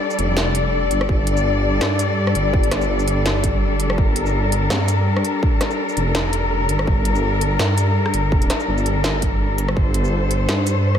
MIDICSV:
0, 0, Header, 1, 4, 480
1, 0, Start_track
1, 0, Key_signature, -2, "minor"
1, 0, Tempo, 361446
1, 1446, Time_signature, 4, 2, 24, 8
1, 14592, End_track
2, 0, Start_track
2, 0, Title_t, "Cello section"
2, 0, Program_c, 0, 48
2, 0, Note_on_c, 0, 55, 88
2, 0, Note_on_c, 0, 62, 76
2, 0, Note_on_c, 0, 69, 78
2, 0, Note_on_c, 0, 74, 96
2, 5259, Note_off_c, 0, 74, 0
2, 5285, Note_on_c, 0, 70, 92
2, 12939, Note_off_c, 0, 70, 0
2, 12972, Note_on_c, 0, 72, 99
2, 14592, Note_off_c, 0, 55, 0
2, 14592, Note_off_c, 0, 62, 0
2, 14592, Note_off_c, 0, 69, 0
2, 14592, Note_off_c, 0, 72, 0
2, 14592, End_track
3, 0, Start_track
3, 0, Title_t, "Detuned saw bass"
3, 0, Program_c, 1, 39
3, 246, Note_on_c, 1, 29, 98
3, 1189, Note_off_c, 1, 29, 0
3, 1207, Note_on_c, 1, 31, 106
3, 1429, Note_off_c, 1, 31, 0
3, 1448, Note_on_c, 1, 31, 102
3, 2390, Note_off_c, 1, 31, 0
3, 2407, Note_on_c, 1, 43, 100
3, 3110, Note_off_c, 1, 43, 0
3, 3126, Note_on_c, 1, 31, 100
3, 3829, Note_off_c, 1, 31, 0
3, 3845, Note_on_c, 1, 31, 96
3, 4549, Note_off_c, 1, 31, 0
3, 4567, Note_on_c, 1, 31, 101
3, 5269, Note_off_c, 1, 31, 0
3, 5285, Note_on_c, 1, 31, 97
3, 6229, Note_off_c, 1, 31, 0
3, 6246, Note_on_c, 1, 43, 99
3, 6949, Note_off_c, 1, 43, 0
3, 7926, Note_on_c, 1, 29, 94
3, 8869, Note_off_c, 1, 29, 0
3, 8887, Note_on_c, 1, 31, 102
3, 9110, Note_off_c, 1, 31, 0
3, 9128, Note_on_c, 1, 31, 99
3, 10070, Note_off_c, 1, 31, 0
3, 10085, Note_on_c, 1, 43, 99
3, 10788, Note_off_c, 1, 43, 0
3, 10807, Note_on_c, 1, 31, 100
3, 11269, Note_off_c, 1, 31, 0
3, 11526, Note_on_c, 1, 31, 98
3, 12469, Note_off_c, 1, 31, 0
3, 12484, Note_on_c, 1, 31, 102
3, 12948, Note_off_c, 1, 31, 0
3, 12969, Note_on_c, 1, 31, 98
3, 13910, Note_off_c, 1, 31, 0
3, 13926, Note_on_c, 1, 43, 95
3, 14592, Note_off_c, 1, 43, 0
3, 14592, End_track
4, 0, Start_track
4, 0, Title_t, "Drums"
4, 140, Note_on_c, 9, 82, 39
4, 248, Note_on_c, 9, 42, 68
4, 273, Note_off_c, 9, 82, 0
4, 381, Note_off_c, 9, 42, 0
4, 487, Note_on_c, 9, 38, 123
4, 620, Note_off_c, 9, 38, 0
4, 728, Note_on_c, 9, 42, 76
4, 860, Note_off_c, 9, 42, 0
4, 1207, Note_on_c, 9, 42, 64
4, 1340, Note_off_c, 9, 42, 0
4, 1341, Note_on_c, 9, 37, 79
4, 1447, Note_on_c, 9, 36, 112
4, 1474, Note_off_c, 9, 37, 0
4, 1580, Note_off_c, 9, 36, 0
4, 1686, Note_on_c, 9, 42, 77
4, 1819, Note_off_c, 9, 42, 0
4, 1819, Note_on_c, 9, 82, 39
4, 1951, Note_off_c, 9, 82, 0
4, 2405, Note_on_c, 9, 37, 64
4, 2405, Note_on_c, 9, 38, 118
4, 2538, Note_off_c, 9, 37, 0
4, 2538, Note_off_c, 9, 38, 0
4, 2646, Note_on_c, 9, 42, 80
4, 2646, Note_on_c, 9, 82, 71
4, 2779, Note_off_c, 9, 42, 0
4, 2779, Note_off_c, 9, 82, 0
4, 3018, Note_on_c, 9, 37, 65
4, 3123, Note_on_c, 9, 42, 67
4, 3150, Note_off_c, 9, 37, 0
4, 3256, Note_off_c, 9, 42, 0
4, 3367, Note_on_c, 9, 36, 119
4, 3499, Note_on_c, 9, 42, 37
4, 3500, Note_off_c, 9, 36, 0
4, 3605, Note_off_c, 9, 42, 0
4, 3605, Note_on_c, 9, 37, 85
4, 3605, Note_on_c, 9, 38, 60
4, 3605, Note_on_c, 9, 42, 81
4, 3738, Note_off_c, 9, 37, 0
4, 3738, Note_off_c, 9, 38, 0
4, 3738, Note_off_c, 9, 42, 0
4, 3738, Note_on_c, 9, 82, 39
4, 3871, Note_off_c, 9, 82, 0
4, 3978, Note_on_c, 9, 82, 38
4, 4085, Note_on_c, 9, 42, 71
4, 4111, Note_off_c, 9, 82, 0
4, 4217, Note_off_c, 9, 42, 0
4, 4324, Note_on_c, 9, 38, 118
4, 4457, Note_off_c, 9, 38, 0
4, 4564, Note_on_c, 9, 42, 82
4, 4566, Note_on_c, 9, 36, 61
4, 4697, Note_off_c, 9, 42, 0
4, 4699, Note_off_c, 9, 36, 0
4, 5042, Note_on_c, 9, 42, 65
4, 5174, Note_off_c, 9, 42, 0
4, 5177, Note_on_c, 9, 37, 81
4, 5286, Note_on_c, 9, 36, 121
4, 5310, Note_off_c, 9, 37, 0
4, 5418, Note_off_c, 9, 36, 0
4, 5524, Note_on_c, 9, 42, 86
4, 5656, Note_off_c, 9, 42, 0
4, 5660, Note_on_c, 9, 82, 38
4, 5793, Note_off_c, 9, 82, 0
4, 6005, Note_on_c, 9, 42, 73
4, 6138, Note_off_c, 9, 42, 0
4, 6245, Note_on_c, 9, 37, 68
4, 6245, Note_on_c, 9, 38, 126
4, 6378, Note_off_c, 9, 37, 0
4, 6378, Note_off_c, 9, 38, 0
4, 6486, Note_on_c, 9, 42, 84
4, 6486, Note_on_c, 9, 82, 69
4, 6618, Note_off_c, 9, 42, 0
4, 6618, Note_off_c, 9, 82, 0
4, 6860, Note_on_c, 9, 37, 65
4, 6966, Note_on_c, 9, 42, 68
4, 6993, Note_off_c, 9, 37, 0
4, 7099, Note_off_c, 9, 42, 0
4, 7207, Note_on_c, 9, 36, 127
4, 7340, Note_off_c, 9, 36, 0
4, 7447, Note_on_c, 9, 37, 81
4, 7447, Note_on_c, 9, 38, 66
4, 7447, Note_on_c, 9, 42, 86
4, 7580, Note_off_c, 9, 37, 0
4, 7580, Note_off_c, 9, 38, 0
4, 7580, Note_off_c, 9, 42, 0
4, 7581, Note_on_c, 9, 82, 37
4, 7714, Note_off_c, 9, 82, 0
4, 7822, Note_on_c, 9, 82, 35
4, 7927, Note_on_c, 9, 42, 73
4, 7955, Note_off_c, 9, 82, 0
4, 8059, Note_off_c, 9, 42, 0
4, 8164, Note_on_c, 9, 38, 127
4, 8297, Note_off_c, 9, 38, 0
4, 8406, Note_on_c, 9, 42, 82
4, 8538, Note_off_c, 9, 42, 0
4, 8885, Note_on_c, 9, 42, 71
4, 9018, Note_off_c, 9, 42, 0
4, 9019, Note_on_c, 9, 37, 81
4, 9128, Note_on_c, 9, 36, 127
4, 9152, Note_off_c, 9, 37, 0
4, 9261, Note_off_c, 9, 36, 0
4, 9366, Note_on_c, 9, 42, 82
4, 9498, Note_off_c, 9, 42, 0
4, 9501, Note_on_c, 9, 82, 37
4, 9634, Note_off_c, 9, 82, 0
4, 9845, Note_on_c, 9, 42, 74
4, 9978, Note_off_c, 9, 42, 0
4, 10085, Note_on_c, 9, 37, 66
4, 10085, Note_on_c, 9, 38, 127
4, 10218, Note_off_c, 9, 37, 0
4, 10218, Note_off_c, 9, 38, 0
4, 10326, Note_on_c, 9, 42, 82
4, 10326, Note_on_c, 9, 82, 67
4, 10459, Note_off_c, 9, 42, 0
4, 10459, Note_off_c, 9, 82, 0
4, 10700, Note_on_c, 9, 37, 64
4, 10806, Note_on_c, 9, 42, 67
4, 10832, Note_off_c, 9, 37, 0
4, 10938, Note_off_c, 9, 42, 0
4, 11049, Note_on_c, 9, 36, 126
4, 11178, Note_on_c, 9, 42, 37
4, 11182, Note_off_c, 9, 36, 0
4, 11287, Note_off_c, 9, 42, 0
4, 11287, Note_on_c, 9, 37, 73
4, 11287, Note_on_c, 9, 38, 62
4, 11287, Note_on_c, 9, 42, 79
4, 11420, Note_off_c, 9, 37, 0
4, 11420, Note_off_c, 9, 38, 0
4, 11420, Note_off_c, 9, 42, 0
4, 11420, Note_on_c, 9, 82, 37
4, 11553, Note_off_c, 9, 82, 0
4, 11660, Note_on_c, 9, 82, 36
4, 11766, Note_on_c, 9, 42, 67
4, 11793, Note_off_c, 9, 82, 0
4, 11898, Note_off_c, 9, 42, 0
4, 12006, Note_on_c, 9, 38, 127
4, 12138, Note_off_c, 9, 38, 0
4, 12247, Note_on_c, 9, 42, 78
4, 12250, Note_on_c, 9, 36, 63
4, 12380, Note_off_c, 9, 42, 0
4, 12382, Note_off_c, 9, 36, 0
4, 12727, Note_on_c, 9, 42, 68
4, 12859, Note_off_c, 9, 42, 0
4, 12861, Note_on_c, 9, 37, 77
4, 12969, Note_on_c, 9, 36, 124
4, 12994, Note_off_c, 9, 37, 0
4, 13102, Note_off_c, 9, 36, 0
4, 13205, Note_on_c, 9, 42, 77
4, 13338, Note_off_c, 9, 42, 0
4, 13341, Note_on_c, 9, 82, 38
4, 13474, Note_off_c, 9, 82, 0
4, 13688, Note_on_c, 9, 42, 68
4, 13820, Note_off_c, 9, 42, 0
4, 13926, Note_on_c, 9, 37, 61
4, 13926, Note_on_c, 9, 38, 125
4, 14058, Note_off_c, 9, 37, 0
4, 14058, Note_off_c, 9, 38, 0
4, 14165, Note_on_c, 9, 42, 78
4, 14165, Note_on_c, 9, 82, 68
4, 14298, Note_off_c, 9, 42, 0
4, 14298, Note_off_c, 9, 82, 0
4, 14540, Note_on_c, 9, 37, 60
4, 14592, Note_off_c, 9, 37, 0
4, 14592, End_track
0, 0, End_of_file